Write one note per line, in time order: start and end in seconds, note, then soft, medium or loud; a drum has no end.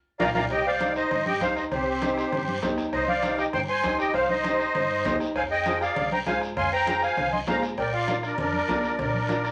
0.20 0.31 A#1 loud
0.20 0.30 F4 loud
0.20 0.30 A#4 medium
0.20 0.30 D5 loud
0.20 0.30 D5 medium
0.20 0.30 F5 loud
0.20 0.30 A#5 loud
0.20 bombo low loud
0.20 high conga loud
0.20 high timbale loud
0.20 long guiro loud
0.35 0.47 A#1 loud
0.35 0.45 F4 medium
0.35 0.45 A#4 medium
0.35 0.45 D5 medium
0.35 0.45 F5 loud
0.35 0.45 A#5 loud
0.35 bombo low loud
0.35 high conga loud
0.35 high timbale loud
0.35 long guiro loud
0.50 0.99 C2 loud
0.50 0.65 G4 medium
0.50 0.65 D#5 medium
0.50 0.67 G5 loud
0.50 bombo low medium
0.50 bombo rim medium
0.50 cowbell loud
0.50 high conga soft
0.50 long guiro medium
0.66 0.94 C5 medium
0.66 0.94 D5 medium
0.66 0.94 F5 medium
0.80 1.02 D#4 medium
0.80 1.02 G4 medium
0.80 1.02 C5 medium
0.80 bombo rim medium
0.80 cowbell medium
0.80 high conga loud
0.80 short guiro medium
0.96 1.24 D#4 medium
0.96 1.24 C5 medium
0.96 1.24 D#5 loud
0.96 bombo rim medium
0.96 short guiro medium
1.11 1.35 G2 medium
1.11 bombo rim medium
1.11 cowbell medium
1.11 high conga soft
1.11 low conga medium
1.11 long guiro medium
1.26 1.40 G4 medium
1.26 1.40 D#5 medium
1.26 1.42 G5 loud
1.26 high conga medium
1.41 1.65 D#2 medium
1.41 1.62 D#4 medium
1.41 1.63 G4 medium
1.41 1.56 C5 medium
1.41 1.63 C5 medium
1.41 1.57 F5 medium
1.41 bombo low medium
1.41 bombo rim medium
1.41 cowbell medium
1.41 high conga medium
1.41 short guiro medium
1.56 1.63 D#4 medium
1.56 1.64 C5 medium
1.56 1.64 D#5 medium
1.56 bombo rim medium
1.56 short guiro medium
1.72 2.20 C2 loud
1.72 2.59 C4 medium
1.72 2.59 G4 medium
1.72 2.59 C5 medium
1.72 bombo low medium
1.72 bombo rim medium
1.72 cowbell loud
1.72 high conga soft
1.72 low conga medium
1.72 long guiro medium
2.02 2.23 D#4 medium
2.02 2.23 G4 medium
2.02 2.24 C5 medium
2.02 bombo rim medium
2.02 cowbell medium
2.02 high conga medium
2.02 short guiro medium
2.17 bombo rim medium
2.17 short guiro medium
2.32 2.56 G2 loud
2.32 bombo rim medium
2.32 cowbell medium
2.32 high conga soft
2.32 low conga medium
2.32 long guiro medium
2.48 high conga medium
2.62 2.87 D#2 medium
2.62 2.84 D#4 medium
2.62 2.84 G4 medium
2.62 2.84 C5 medium
2.62 bombo low medium
2.62 bombo rim medium
2.62 cowbell medium
2.62 high conga medium
2.62 low timbale medium
2.62 short guiro medium
2.78 bombo rim medium
2.78 short guiro medium
2.93 3.41 C2 loud
2.93 3.07 D#4 medium
2.93 3.07 C5 medium
2.93 3.07 D#5 loud
2.93 bombo low medium
2.93 bombo rim medium
2.93 cowbell loud
2.93 high conga soft
2.93 long guiro medium
3.07 3.36 C5 medium
3.07 3.37 D5 medium
3.07 3.39 F5 medium
3.07 high conga medium
3.23 3.44 D#4 medium
3.23 3.44 G4 medium
3.23 3.45 C5 medium
3.23 bombo rim medium
3.23 cowbell medium
3.23 high conga medium
3.23 short guiro medium
3.38 3.45 G4 medium
3.38 3.46 D#5 medium
3.38 3.45 G5 medium
3.38 bombo rim medium
3.38 short guiro medium
3.53 3.78 G2 loud
3.53 3.60 C5 medium
3.53 3.61 G5 medium
3.53 3.60 C6 loud
3.53 bombo rim medium
3.53 cowbell medium
3.53 high conga soft
3.53 low conga medium
3.53 long guiro medium
3.69 3.97 C5 medium
3.69 3.97 G#5 medium
3.69 3.97 C6 loud
3.83 4.08 D#2 medium
3.83 4.05 D#4 medium
3.83 4.05 G4 medium
3.83 4.05 C5 medium
3.83 bombo low medium
3.83 bombo rim medium
3.83 cowbell medium
3.83 high conga medium
3.83 short guiro medium
3.99 4.13 G4 medium
3.99 4.13 D#5 medium
3.99 4.15 G5 medium
3.99 bombo rim medium
3.99 short guiro medium
4.14 4.63 C2 loud
4.14 4.28 C5 medium
4.14 4.28 F5 loud
4.14 bombo low medium
4.14 bombo rim medium
4.14 cowbell loud
4.14 high conga soft
4.14 long guiro medium
4.29 5.17 D#4 medium
4.29 5.16 C5 medium
4.29 5.16 D#5 loud
4.29 high conga medium
4.44 4.66 D#4 medium
4.44 4.66 G4 medium
4.44 4.66 D#5 medium
4.44 bombo rim medium
4.44 cowbell medium
4.44 high conga medium
4.44 short guiro medium
4.59 bombo rim medium
4.59 short guiro medium
4.75 4.99 G2 loud
4.75 bombo rim medium
4.75 cowbell medium
4.75 high conga soft
4.75 low conga medium
4.75 long guiro medium
5.05 5.29 D#2 medium
5.05 5.26 D#4 medium
5.05 5.27 G4 medium
5.05 5.27 C5 medium
5.05 bombo low medium
5.05 bombo rim medium
5.05 cowbell medium
5.05 high conga medium
5.05 low conga medium
5.05 low timbale medium
5.05 short guiro medium
5.20 bombo rim medium
5.20 short guiro medium
5.35 5.84 F2 loud
5.35 5.42 C5 medium
5.35 5.43 F5 medium
5.35 5.43 G#5 loud
5.35 bombo low medium
5.35 bombo rim medium
5.35 cowbell loud
5.35 high conga soft
5.35 long guiro medium
5.51 5.79 G#4 medium
5.51 5.79 D#5 medium
5.51 5.82 G5 medium
5.66 5.87 F4 medium
5.66 5.87 G#4 medium
5.66 5.88 C5 medium
5.66 bombo rim medium
5.66 cowbell medium
5.66 high conga medium
5.66 short guiro medium
5.81 6.09 G#4 medium
5.81 6.10 D5 medium
5.81 6.09 F5 medium
5.81 bombo rim medium
5.81 short guiro medium
5.96 6.20 C2 loud
5.96 bombo rim medium
5.96 cowbell medium
5.96 high conga soft
5.96 low conga medium
5.96 long guiro medium
6.11 6.18 C5 medium
6.11 6.19 G5 medium
6.11 6.19 A#5 medium
6.11 high conga medium
6.26 6.51 G#2 medium
6.26 6.48 F4 medium
6.26 6.48 G#4 medium
6.26 6.40 C5 medium
6.26 6.48 C5 medium
6.26 6.41 F5 medium
6.26 6.41 G#5 medium
6.26 bombo low medium
6.26 bombo rim medium
6.26 cowbell medium
6.26 high conga medium
6.26 short guiro medium
6.41 bombo rim medium
6.41 short guiro medium
6.57 7.05 F2 loud
6.57 6.71 F5 medium
6.57 6.71 G#5 medium
6.57 6.71 C6 loud
6.57 bombo low medium
6.57 bombo rim medium
6.57 cowbell loud
6.57 high conga soft
6.57 low conga medium
6.57 long guiro medium
6.72 7.00 C5 medium
6.72 7.01 G5 medium
6.72 7.03 A#5 loud
6.86 7.08 F4 medium
6.86 7.08 G#4 medium
6.86 7.08 C5 medium
6.86 bombo rim medium
6.86 cowbell medium
6.86 high conga medium
6.86 short guiro medium
7.02 7.31 C5 medium
7.02 7.31 F5 medium
7.02 7.32 G#5 loud
7.02 bombo rim medium
7.02 short guiro medium
7.17 7.41 C2 loud
7.17 bombo rim medium
7.17 cowbell medium
7.17 high conga soft
7.17 low conga medium
7.17 long guiro medium
7.33 7.39 D#5 medium
7.33 7.40 G#5 medium
7.33 7.40 C6 medium
7.33 high conga medium
7.47 7.72 G#2 medium
7.47 7.69 F4 medium
7.47 7.69 G#4 medium
7.47 7.62 C5 medium
7.47 7.69 C5 medium
7.47 7.62 F5 medium
7.47 7.62 A#5 medium
7.47 bombo low medium
7.47 bombo rim medium
7.47 cowbell medium
7.47 high conga medium
7.47 low timbale medium
7.47 short guiro medium
7.62 bombo rim medium
7.62 short guiro medium
7.78 8.26 A#1 loud
7.78 7.92 A#4 medium
7.78 7.92 D5 medium
7.78 7.92 G5 loud
7.78 bombo low medium
7.78 bombo rim medium
7.78 cowbell loud
7.78 high conga soft
7.78 long guiro medium
7.93 8.21 F4 medium
7.93 8.21 D5 medium
7.93 8.24 F5 medium
8.08 8.29 F4 medium
8.08 8.29 A#4 medium
8.08 8.29 D5 medium
8.08 bombo rim medium
8.08 cowbell medium
8.08 high conga medium
8.08 short guiro medium
8.23 8.37 D4 medium
8.23 8.38 A#4 medium
8.23 8.38 D5 medium
8.23 bombo rim medium
8.23 short guiro medium
8.38 8.62 F2 loud
8.38 8.95 D4 medium
8.38 8.96 A#4 medium
8.38 8.99 D5 medium
8.38 bombo rim medium
8.38 cowbell medium
8.38 high conga soft
8.38 low conga medium
8.38 long guiro medium
8.53 high conga medium
8.68 8.93 D2 medium
8.68 8.90 F4 medium
8.68 8.90 A#4 medium
8.68 8.90 D5 medium
8.68 bombo low medium
8.68 bombo rim medium
8.68 cowbell medium
8.68 high conga medium
8.68 low timbale medium
8.68 short guiro medium
8.84 bombo rim medium
8.84 short guiro medium
8.99 9.47 A#1 loud
8.99 9.52 D4 medium
8.99 9.52 A#4 medium
8.99 9.52 D5 medium
8.99 bombo low medium
8.99 bombo rim medium
8.99 cowbell loud
8.99 high conga soft
8.99 low conga medium
8.99 long guiro medium
9.14 high conga medium
9.29 9.50 F4 medium
9.29 9.50 A#4 medium
9.29 9.51 D5 medium
9.29 bombo rim medium
9.29 cowbell medium
9.29 high conga medium
9.29 short guiro medium
9.44 bombo rim medium
9.44 short guiro medium